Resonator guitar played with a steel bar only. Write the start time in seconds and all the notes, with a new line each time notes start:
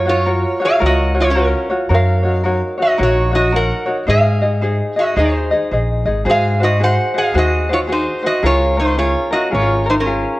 0.09 F4 C#5
0.65 G#4 F5
0.86 F#4 D#5
1.21 F4 C#5
1.30 C#4 A#4
1.94 A#4 F5
2.82 F#4 D#5
3.03 F#4 C#5
3.35 F#4 D#5
3.56 A#4 F#5
4.09 G#4 F5
4.99 F#4 D#5
5.19 D#4 C5
6.30 G#4 F5
6.63 F#4 D#5
6.83 C5 F#5
7.18 G#4 F5
7.38 F#4 D#5
7.73 F4 C#5
7.92 D#4 C5
8.26 F#4 D#5
8.46 F4 C#5
8.80 D#4 C5
8.99 F4 C#5
9.32 F#4 D#5
9.54 F4 C#5
9.90 D#4 C5
10.00 C#4 A#4